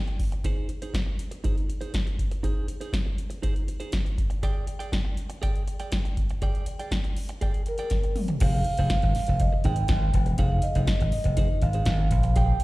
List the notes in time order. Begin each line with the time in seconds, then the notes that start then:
0.07 muted clean electric guitar stroke, closed hi-hat
0.19 kick, open hi-hat
0.32 muted clean electric guitar stroke, closed hi-hat
0.44 D#4 G#4 C5, kick, closed hi-hat
0.69 muted clean electric guitar stroke, closed hi-hat
0.82 D#4 G#4 C5, closed hi-hat
0.94 muted clean electric guitar stroke, kick, snare, closed hi-hat
1.06 muted clean electric guitar stroke
1.19 closed hi-hat
1.31 muted clean electric guitar stroke, closed hi-hat
1.44 D#4 G#4 C5, kick, closed hi-hat
1.57 muted clean electric guitar stroke, closed hi-hat
1.69 muted clean electric guitar stroke, closed hi-hat
1.81 D#4 G#4 C5, closed hi-hat
1.93 muted clean electric guitar stroke, kick, snare, closed hi-hat
2.06 muted clean electric guitar stroke, closed hi-hat
2.19 kick, closed hi-hat
2.31 muted clean electric guitar stroke, closed hi-hat
2.43 D#4 G#4 C5, kick, closed hi-hat
2.68 muted clean electric guitar stroke, closed hi-hat
2.81 D#4 G#4 C5, closed hi-hat
2.93 muted clean electric guitar stroke, kick, snare, closed hi-hat
3.06 muted clean electric guitar stroke
3.18 closed hi-hat
3.30 muted clean electric guitar stroke, closed hi-hat
3.42 D#4 G#4 C5, kick, closed hi-hat
3.55 muted clean electric guitar stroke, closed hi-hat
3.68 muted clean electric guitar stroke, closed hi-hat
3.80 D#4 G#4 C5, closed hi-hat
3.92 kick, snare, closed hi-hat
4.05 muted clean electric guitar stroke, closed hi-hat
4.18 kick, closed hi-hat
4.30 muted clean electric guitar stroke, closed hi-hat
4.43 G#4 D5 G5, kick, closed hi-hat
4.67 muted clean electric guitar stroke, closed hi-hat
4.79 G#4 D5 G5, closed hi-hat
4.92 muted clean electric guitar stroke, kick, snare, closed hi-hat
5.05 muted clean electric guitar stroke
5.17 closed hi-hat
5.30 muted clean electric guitar stroke, closed hi-hat
5.42 G#4 D5 G5, kick, closed hi-hat
5.55 muted clean electric guitar stroke, closed hi-hat
5.67 muted clean electric guitar stroke, closed hi-hat
5.80 G#4 D5 G5, closed hi-hat
5.92 muted clean electric guitar stroke, kick, snare, closed hi-hat
6.05 muted clean electric guitar stroke, closed hi-hat
6.17 kick, closed hi-hat
6.30 muted clean electric guitar stroke, closed hi-hat
6.42 G#4 D5 G5, kick, closed hi-hat
6.55 closed hi-hat
6.66 muted clean electric guitar stroke, closed hi-hat
6.79 G#4 D5 G5, closed hi-hat
6.91 muted clean electric guitar stroke, kick, snare, closed hi-hat
7.04 muted clean electric guitar stroke, closed hi-hat
7.17 open hi-hat
7.29 muted clean electric guitar stroke, closed hi-hat
7.41 G#4 D5 G5, kick, closed hi-hat
7.54 muted clean electric guitar stroke, closed hi-hat
7.66 A#4, muted clean electric guitar stroke, closed hi-hat
7.78 G#4 D5 G5, closed hi-hat
7.90 muted clean electric guitar stroke, kick, snare, closed hi-hat
8.03 muted clean electric guitar stroke, closed hi-hat
8.16 mid tom, open hi-hat
8.28 muted clean electric guitar stroke, closed hi-hat, floor tom
8.40 F1 D#4 G#4 C5 F5, kick, closed hi-hat, crash
8.64 muted clean electric guitar stroke, closed hi-hat
8.77 F1 D#4 G#4 C5, closed hi-hat
8.90 F5, muted clean electric guitar stroke, kick, snare, closed hi-hat
9.02 G#1, muted clean electric guitar stroke, closed hi-hat
9.15 snare, open hi-hat
9.27 F1, muted clean electric guitar stroke, closed hi-hat
9.40 D#5, muted clean electric guitar stroke, kick, closed hi-hat
9.53 muted clean electric guitar stroke
9.64 G#1 D#4 G#4 C5 G5, closed hi-hat
9.76 muted clean electric guitar stroke, closed hi-hat
9.88 G#1, muted clean electric guitar stroke, kick, snare, closed hi-hat
10.02 muted clean electric guitar stroke
10.14 E1, kick, closed hi-hat
10.26 muted clean electric guitar stroke, closed hi-hat
10.38 F1 D#4 G#4 C5 F5, kick, closed hi-hat
10.62 D#5, muted clean electric guitar stroke, closed hi-hat
10.75 F1 D#4 G#4 C5, closed hi-hat
10.87 muted clean electric guitar stroke, kick, snare, closed hi-hat
11.00 G#1, muted clean electric guitar stroke, closed hi-hat
11.12 D#5, open hi-hat
11.24 F1, muted clean electric guitar stroke, closed hi-hat
11.37 D#4 G#4 C5, kick, closed hi-hat
11.49 muted clean electric guitar stroke
11.62 G#1 F5, muted clean electric guitar stroke, closed hi-hat
11.73 D#4 G#4 C5, closed hi-hat
11.86 G#1, muted clean electric guitar stroke, kick, snare, closed hi-hat
11.99 muted clean electric guitar stroke
12.11 A#1, kick, closed hi-hat
12.23 muted clean electric guitar stroke, closed hi-hat
12.36 G#4 D5 G5, kick, closed hi-hat
12.60 muted clean electric guitar stroke, closed hi-hat